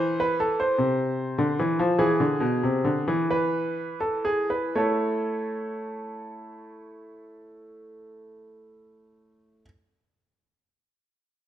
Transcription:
Already playing: E3 C5
0.20 B4
0.40 A4
0.60 C5
0.78 C3
1.38 D3
1.59 E3
1.79 F3
1.98 E3 G#4
2.20 D3
2.40 B2
2.63 C3
2.85 D3
3.08 E3
3.31 B4
4.00 A4
4.25 G#4
4.50 B4
4.75 A3 E4 A4 C#5

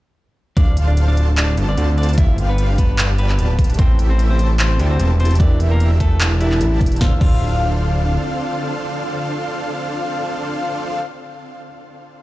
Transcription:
0.57 D1 D3 C4 D4 F4 A4 C5 D5 F5, kick, closed hi-hat
0.77 closed hi-hat
0.88 D4 D5
0.97 closed hi-hat
1.08 D4 D5
1.17 D4 F4 A4 C5 A5, closed hi-hat
1.37 D4 D5, clap, closed hi-hat
1.57 G1, closed hi-hat
1.68 D4 D5
1.78 D2, closed hi-hat
1.98 D4 D5, closed hi-hat
2.03 closed hi-hat
2.09 closed hi-hat
2.13 closed hi-hat
2.18 G1 F3 B3 D4 E4 F4 G4 B4 E5 F5, kick, closed hi-hat
2.38 closed hi-hat
2.49 B3 B4
2.58 closed hi-hat
2.78 B3 D4 F4 G4 B4 A5, kick, closed hi-hat
2.98 clap, closed hi-hat
3.18 B3 B4, closed hi-hat
3.29 clap
3.39 D1, closed hi-hat
3.59 kick, closed hi-hat
3.64 closed hi-hat
3.70 closed hi-hat
3.74 A3 A4, closed hi-hat
3.79 A1 C3 A3 C4 E4 G4 A4 C5 E5 G5, kick, closed hi-hat
3.99 closed hi-hat
4.10 C4 C5
4.19 closed hi-hat
4.30 C4 C5
4.39 C4 E4 G4 A4 A5, closed hi-hat
4.59 C4 C5, clap, closed hi-hat
4.77 D2 A3 A4 C5 E5 G5, closed hi-hat
4.91 C4 C5
5.00 E1, closed hi-hat
5.20 C4 C5, closed hi-hat
5.25 closed hi-hat
5.31 closed hi-hat
5.35 E3 D4, closed hi-hat
5.40 E1 D3 G3 D4 E4 G4 A#4 D5 E5, kick, closed hi-hat
5.60 closed hi-hat
5.71 A#3 A#4
5.80 closed hi-hat
6.00 A3 D4 E4 G4 A4 A#4 A5, kick, closed hi-hat
6.21 clap, closed hi-hat
6.39 E3 D4 E4 G4 A#4 E5, closed hi-hat
6.51 D4 E4 G4 A#4 A5, clap
6.61 A1, closed hi-hat
6.81 E1, kick, closed hi-hat
6.86 closed hi-hat
6.92 closed hi-hat
6.96 D3 D4, closed hi-hat
7.01 D1 D3 C4 D4 F4 A4 C5 F5 E6, kick, snare
7.18 D1 D3 D4 F4 A4 C5 F5, kick, crash
7.22 C5 E6

